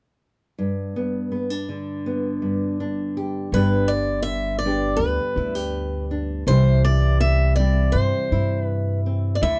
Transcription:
0.58 nylon-string guitar G2
0.96 nylon-string guitar B3
1.32 nylon-string guitar B3
1.50 nylon-string guitar D4
1.69 nylon-string guitar D3
2.06 nylon-string guitar B3
2.42 nylon-string guitar G2
2.80 nylon-string guitar D4
3.17 nylon-string guitar G4
3.52 upright bass G1, nylon-string guitar G2 D3 B3 D4, steel-string acoustic guitar B4
3.56 nylon-string guitar G4
3.88 steel-string acoustic guitar D5
4.22 steel-string acoustic guitar E5
4.59 steel-string acoustic guitar D5
4.65 nylon-string guitar B3 D4 G4
4.96 upright bass D2, steel-string acoustic guitar B4
5.36 upright bass D2, nylon-string guitar E4
5.55 nylon-string guitar G4
6.11 nylon-string guitar D4
6.47 upright bass C2, nylon-string guitar C3 E3 G3 C4 E4, steel-string acoustic guitar C5
6.85 steel-string acoustic guitar D5
7.20 steel-string acoustic guitar E5
7.56 nylon-string guitar G3 C4, steel-string acoustic guitar D5
7.60 nylon-string guitar E4
7.92 upright bass G2, steel-string acoustic guitar C5
8.32 upright bass G2, nylon-string guitar E4
8.63 steel-string acoustic guitar B4
9.06 nylon-string guitar C4
9.35 steel-string acoustic guitar D5
9.41 upright bass D2, nylon-string guitar D3 E4, steel-string acoustic guitar E5

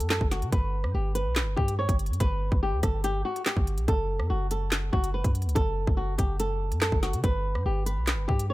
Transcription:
0.00 808-style bass F#2, closed hi-hat
0.10 nylon-string guitar A4, snare, clap, closed hi-hat
0.21 808-style bass F#1, kick
0.31 nylon-string guitar F#4, snare, closed hi-hat
0.42 808-style bass C#3, closed hi-hat
0.52 808-style bass G1, nylon-string guitar B4, kick, closed hi-hat
0.84 808-style bass G2, cross-stick
0.94 808-style bass G1, nylon-string guitar G4
1.15 nylon-string guitar B4, closed hi-hat
1.26 808-style bass B1
1.36 snare, clap, closed hi-hat
1.42 808-style bass G1
1.56 808-style bass G2, nylon-string guitar G4, kick
1.68 closed hi-hat
1.79 nylon-string guitar C#5
1.89 808-style bass G1, kick, closed hi-hat
1.99 closed hi-hat
2.06 808-style bass G2, closed hi-hat
2.13 closed hi-hat
2.20 808-style bass G1, nylon-string guitar B4, kick, closed hi-hat
2.52 808-style bass G1, kick
2.63 nylon-string guitar G4
2.73 808-style bass D2
2.83 808-style bass G1, nylon-string guitar A4, kick, cross-stick, closed hi-hat
3.04 nylon-string guitar G4, closed hi-hat
3.25 nylon-string guitar F#4
3.36 closed hi-hat
3.46 nylon-string guitar G4, snare, clap, closed hi-hat
3.57 808-style bass G1, kick
3.67 closed hi-hat
3.78 808-style bass B1, closed hi-hat
3.88 808-style bass F#1, nylon-string guitar A4, kick, closed hi-hat
4.20 808-style bass F#2, cross-stick
4.30 808-style bass F#1, nylon-string guitar F#4
4.51 nylon-string guitar A4, closed hi-hat
4.72 snare, clap, closed hi-hat
4.93 808-style bass F#1, nylon-string guitar F#4, kick
5.04 closed hi-hat
5.14 nylon-string guitar B4
5.24 808-style bass F#2, kick, closed hi-hat
5.35 closed hi-hat
5.42 808-style bass C#2, closed hi-hat
5.49 closed hi-hat
5.55 808-style bass F#1, nylon-string guitar A4, kick, closed hi-hat
5.87 808-style bass F#1, kick
5.97 nylon-string guitar F#4
6.18 808-style bass F#1, nylon-string guitar G4, kick, closed hi-hat
6.40 nylon-string guitar A4, closed hi-hat
6.71 808-style bass F#2, closed hi-hat
6.81 nylon-string guitar A4, snare, clap, closed hi-hat
6.92 808-style bass F#1, kick
7.03 nylon-string guitar F#4, snare, closed hi-hat
7.13 808-style bass C#3, closed hi-hat
7.24 808-style bass G1, nylon-string guitar B4, kick, closed hi-hat
7.55 808-style bass G2, cross-stick
7.66 808-style bass G1, nylon-string guitar G4
7.86 nylon-string guitar B4, closed hi-hat
7.97 808-style bass B1
8.07 snare, clap, closed hi-hat
8.13 808-style bass G1
8.28 808-style bass G2, nylon-string guitar G4, kick
8.39 closed hi-hat
8.50 nylon-string guitar C#5

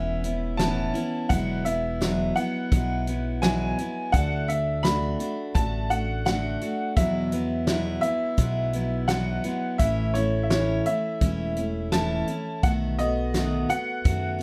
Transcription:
Already playing: upright bass E1, steel-string acoustic guitar E3 B3 C#4 E4, upright piano E5
0.24 steel-string acoustic guitar B3 C#4 E4, closed hi-hat
0.57 steel-string acoustic guitar A2 E3 B3 C#4 E4, upright piano A5, snare, closed hi-hat
0.94 steel-string acoustic guitar B3 C#4 E4, closed hi-hat
1.29 upright bass E1, steel-string acoustic guitar E2 B2 F#3 G#3 B3 E4, upright piano F#5, kick, closed hi-hat
1.65 steel-string acoustic guitar F#3 G#3 B3 E4, upright piano E5, closed hi-hat
2.01 steel-string acoustic guitar E2 B2 F#3 G#3 B3 E4, snare, closed hi-hat
2.36 steel-string acoustic guitar F#3 G#3 B3 E4, upright piano F#5, closed hi-hat
2.72 upright bass B1, steel-string acoustic guitar F#3 G#3 B3 E4, kick, closed hi-hat
3.07 steel-string acoustic guitar F#3 G#3 B3 E4, closed hi-hat
3.42 steel-string acoustic guitar E2 B2 F#3 G#3 B3 E4, upright piano G#5, snare, closed hi-hat
3.78 steel-string acoustic guitar F#3 G#3 B3 E4, closed hi-hat
4.12 upright bass D2, steel-string acoustic guitar D3 A3 D4 F#4, upright piano F#5, kick, closed hi-hat
4.48 steel-string acoustic guitar A3 D4 F#4, upright piano E5, closed hi-hat
4.83 steel-string acoustic guitar D3 A3 D4 F#4, upright piano B5, snare, closed hi-hat
5.19 steel-string acoustic guitar A3 D4 F#4, closed hi-hat
5.54 upright bass A1, steel-string acoustic guitar D3 A3 D4 F#4, upright piano A5, kick, closed hi-hat
5.90 steel-string acoustic guitar A3 D4 F#4, upright piano F#5, closed hi-hat
6.25 steel-string acoustic guitar D3 A3 D4 F#4, upright piano F#5, snare, closed hi-hat
6.61 steel-string acoustic guitar A3 D4 F#4, closed hi-hat
6.96 steel-string acoustic guitar E2 B2 F#3 G#3 B3 E4, upright bass E2, upright piano E5, kick, closed hi-hat
7.32 steel-string acoustic guitar F#3 G#3 B3 E4, closed hi-hat
7.67 steel-string acoustic guitar E2 B2 F#3 G#3 B3 E4, snare, closed hi-hat
8.01 steel-string acoustic guitar F#3 G#3 B3 E4, upright piano E5, closed hi-hat
8.37 upright bass B1, steel-string acoustic guitar F#3 G#3 B3 E4, kick, closed hi-hat
8.73 steel-string acoustic guitar F#3 G#3 B3 E4, closed hi-hat
9.08 steel-string acoustic guitar E2 B2 F#3 G#3 B3 E4, upright piano F#5, snare, closed hi-hat
9.44 steel-string acoustic guitar F#3 G#3 B3 E4, closed hi-hat
9.78 upright bass A1, steel-string acoustic guitar A2 E3 A3 C#4 E4, upright piano E5, kick, closed hi-hat
10.14 steel-string acoustic guitar A3 C#4 E4, upright piano C#5, closed hi-hat
10.43 upright piano E5
10.50 steel-string acoustic guitar A2 E3 A3 C#4 E4, upright piano C#5, snare, closed hi-hat
10.86 steel-string acoustic guitar A3 C#4 E4, upright piano E5, closed hi-hat
11.21 upright bass E1, steel-string acoustic guitar E3 A3 C#4 E4, kick, closed hi-hat
11.56 steel-string acoustic guitar A3 C#4 E4, closed hi-hat
11.92 steel-string acoustic guitar A2 E3 A3 C#4 E4, upright piano A5, snare, closed hi-hat
12.27 steel-string acoustic guitar A3 C#4 E4, closed hi-hat
12.63 upright bass B1, steel-string acoustic guitar B2 D#3 A3 B3 F#4, upright piano F#5, kick, closed hi-hat
12.99 steel-string acoustic guitar A3 B3 F#4, upright piano D#5, closed hi-hat
13.34 steel-string acoustic guitar B2 D#3 A3 B3 F#4, snare, closed hi-hat
13.69 steel-string acoustic guitar A3 B3 F#4, upright piano F#5, closed hi-hat
14.04 upright bass F#2, steel-string acoustic guitar D#3 A3 B3 F#4, kick, closed hi-hat
14.39 steel-string acoustic guitar F#4

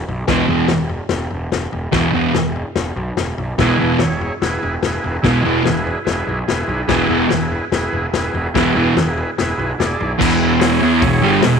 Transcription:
0.08 picked electric bass B1, floor tom
0.28 picked electric bass E1, distorted electric guitar E2 B2 E3, kick, snare, floor tom
0.49 picked electric bass E1, distorted electric guitar E2 B2 E3, floor tom
0.68 picked electric bass E1, snare, floor tom
0.89 floor tom
1.09 picked electric bass E1, snare, floor tom
1.30 picked electric bass E1, floor tom
1.51 picked electric bass E1, snare, floor tom
1.72 picked electric bass E1, floor tom
1.92 picked electric bass E1, distorted electric guitar E2 B2 E3, kick, snare, floor tom
2.13 picked electric bass E1, distorted electric guitar E2 B2 E3, floor tom
2.34 picked electric bass E1, snare, floor tom
2.56 floor tom
2.76 picked electric bass E1, snare, floor tom
2.96 picked electric bass B1, floor tom
3.17 picked electric bass E1, snare, floor tom
3.38 picked electric bass B1, floor tom
3.59 picked electric bass E1, distorted electric guitar E2 B2 E3, transistor combo organ E4 G#4 B4, kick, snare, floor tom
3.79 picked electric bass E1, distorted electric guitar E2 B2 E3, floor tom
3.99 picked electric bass E1, transistor combo organ E4 G#4 C#5, snare, floor tom
4.21 floor tom
4.41 picked electric bass E1, transistor combo organ E4 G#4 B4, snare, floor tom
4.62 picked electric bass E1, floor tom
4.83 picked electric bass E1, transistor combo organ E4 G#4 B4, snare, floor tom
5.03 picked electric bass E1, floor tom
5.22 picked electric bass E1, distorted electric guitar E2 B2 E3, transistor combo organ E4 G#4 B4, kick, snare, floor tom
5.44 picked electric bass E1, distorted electric guitar E2 B2 E3, floor tom
5.65 picked electric bass E1, transistor combo organ E4 G#4 B4, snare, floor tom
5.87 floor tom
6.05 picked electric bass E1, transistor combo organ E4 G#4 B4, snare, floor tom
6.27 picked electric bass B1, floor tom
6.47 picked electric bass E1, transistor combo organ E4 G#4 B4, snare, floor tom
6.68 picked electric bass B1, floor tom
6.87 picked electric bass E1, distorted electric guitar E2 B2 E3, transistor combo organ E4 G#4 B4, kick, snare, floor tom
7.09 picked electric bass E1, distorted electric guitar E2 B2 E3, floor tom
7.30 picked electric bass E1, transistor combo organ E4 G#4 B4, snare, floor tom
7.52 floor tom
7.71 picked electric bass E1, transistor combo organ E4 G#4 B4, snare, floor tom
7.92 picked electric bass E1, floor tom
8.13 picked electric bass E1, transistor combo organ E4 G#4 B4, snare, floor tom
8.33 picked electric bass E1, floor tom
8.54 picked electric bass E1, distorted electric guitar E2 B2 E3, transistor combo organ E4 G#4 B4, kick, snare, floor tom
8.74 picked electric bass E1, distorted electric guitar E2 B2 E3, floor tom
8.96 picked electric bass E1, transistor combo organ E4 G#4 B4, snare, floor tom
9.17 floor tom
9.38 picked electric bass E1, transistor combo organ E4 G#4 B4, snare, floor tom
9.58 picked electric bass B1, floor tom
9.78 picked electric bass E1, transistor combo organ E4 G#4 D5, snare, floor tom
10.00 picked electric bass B1, floor tom
10.18 picked electric bass E1, distorted electric guitar E2 B2 E3, transistor combo organ E4 G#4 B4, kick, crash
10.58 transistor combo organ E4 G#4 C#5, snare, open hi-hat
10.81 picked electric bass E2, distorted electric guitar E3 B3 E4
11.00 picked electric bass E1, distorted electric guitar E2 B2, transistor combo organ E4 G#4 C#5, kick, open hi-hat
11.22 picked electric bass G1, distorted electric guitar G2 D3 G3
11.42 picked electric bass E1, distorted electric guitar E2 B2, transistor combo organ E4 G#4 B4, snare, open hi-hat

